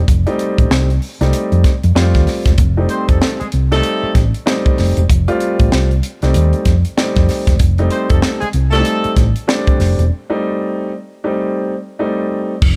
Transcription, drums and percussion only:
0.08 kick loud
0.08 closed hi-hat loud
0.27 closed hi-hat soft
0.39 closed hi-hat medium
0.58 kick medium
0.58 closed hi-hat medium
0.71 snare loud
0.90 closed hi-hat soft
1.02 open hi-hat medium
1.21 snare soft
1.21 closed hi-hat soft
1.33 closed hi-hat medium
1.52 closed hi-hat soft
1.64 kick medium
1.64 snare soft
1.64 closed hi-hat medium
1.83 closed hi-hat soft
1.96 snare loud
2.14 kick medium
2.14 snare soft
2.14 closed hi-hat soft
2.27 snare soft
2.27 open hi-hat medium
2.46 kick medium
2.46 snare soft
2.46 closed hi-hat medium
2.58 kick loud
2.58 closed hi-hat loud
2.89 closed hi-hat medium
3.09 kick medium
3.09 closed hi-hat soft
3.22 snare loud
3.41 closed hi-hat soft
3.52 closed hi-hat medium
3.72 snare soft
3.72 closed hi-hat soft
3.83 closed hi-hat medium
4.15 kick medium
4.15 snare soft
4.15 closed hi-hat medium
4.34 closed hi-hat medium
4.47 snare loud
4.66 kick medium
4.66 closed hi-hat soft
4.78 snare soft
4.78 open hi-hat medium
4.97 closed hi-hat medium
5.10 kick loud
5.10 closed hi-hat loud
5.28 closed hi-hat soft
5.40 closed hi-hat medium
5.59 kick medium
5.59 closed hi-hat soft
5.72 snare loud
5.91 closed hi-hat soft
6.03 closed hi-hat medium
6.22 snare soft
6.22 closed hi-hat soft
6.34 closed hi-hat medium
6.53 closed hi-hat soft
6.65 kick medium
6.65 snare soft
6.65 closed hi-hat medium
6.85 closed hi-hat medium
6.98 snare loud
7.16 kick loud
7.16 snare soft
7.16 closed hi-hat soft
7.29 snare soft
7.29 open hi-hat medium
7.47 kick medium
7.47 snare soft
7.47 closed hi-hat medium
7.59 kick loud
7.59 closed hi-hat loud
7.78 closed hi-hat soft
7.90 closed hi-hat medium
8.10 kick medium
8.10 closed hi-hat medium
8.22 snare loud
8.42 closed hi-hat soft
8.53 closed hi-hat medium
8.73 snare soft
8.73 closed hi-hat soft
8.85 closed hi-hat medium
9.04 closed hi-hat soft
9.16 kick medium
9.16 snare soft
9.16 closed hi-hat medium
9.36 closed hi-hat medium
9.49 snare loud
9.67 kick medium
9.67 closed hi-hat soft
9.80 snare soft
9.80 open hi-hat medium
9.99 closed hi-hat medium
12.62 kick loud
12.62 crash loud

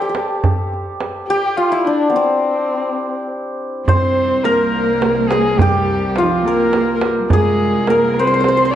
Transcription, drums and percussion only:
0.15 tombak tek medium
0.44 tombak dum medium
0.58 tombak ka soft
0.73 tombak ka soft
1.00 tombak tek medium
1.29 tombak ka soft
3.88 tombak dum medium
4.02 tombak ka soft
4.16 tombak ka soft
4.44 tombak tek medium
4.73 tombak ka soft
5.02 tombak tek medium
5.31 tombak tek medium
5.59 tombak dum medium
5.74 tombak ka soft
5.88 tombak ka soft
6.16 tombak tek medium
6.45 tombak ka soft
6.73 tombak tek medium
7.01 tombak tek medium
7.30 tombak dum medium
7.45 tombak ka soft
7.59 tombak ka soft
7.87 tombak tek medium
8.16 tombak ka soft
8.44 tombak tek medium

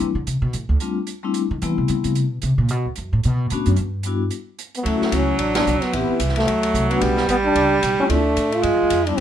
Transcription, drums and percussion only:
0.27 closed hi-hat soft
0.53 closed hi-hat soft
0.80 closed hi-hat soft
1.07 closed hi-hat soft
1.34 closed hi-hat soft
1.62 closed hi-hat soft
1.88 closed hi-hat soft
2.04 closed hi-hat soft
2.15 closed hi-hat soft
2.42 closed hi-hat soft
2.69 closed hi-hat soft
2.96 closed hi-hat soft
3.23 closed hi-hat soft
3.50 closed hi-hat medium
3.66 closed hi-hat soft
3.76 closed hi-hat soft
4.03 closed hi-hat soft
4.31 closed hi-hat soft
4.59 closed hi-hat medium
4.75 closed hi-hat soft
4.85 kick soft
4.85 ride medium
5.02 snare soft
5.12 kick soft
5.12 hi-hat pedal soft
5.12 ride medium
5.39 kick soft
5.39 ride medium
5.55 snare medium
5.55 ride medium
5.67 hi-hat pedal medium
5.82 snare soft
5.82 ride soft
5.93 kick soft
5.93 ride medium
6.20 kick soft
6.20 hi-hat pedal medium
6.20 ride medium
6.29 snare soft
6.36 snare soft
6.36 ride soft
6.47 kick soft
6.47 ride medium
6.63 ride medium
6.74 kick soft
6.74 hi-hat pedal medium
6.91 ride soft
7.01 kick soft
7.01 ride medium
7.17 snare soft
7.28 kick soft
7.28 hi-hat pedal soft
7.28 ride medium
7.55 kick soft
7.55 ride medium
7.83 kick soft
7.83 hi-hat pedal soft
7.83 ride medium
8.10 kick soft
8.10 ride medium
8.37 kick soft
8.37 hi-hat pedal soft
8.37 ride medium
8.52 ride soft
8.63 kick soft
8.63 ride medium
8.90 kick soft
8.90 hi-hat pedal medium
8.90 ride medium
9.07 ride soft

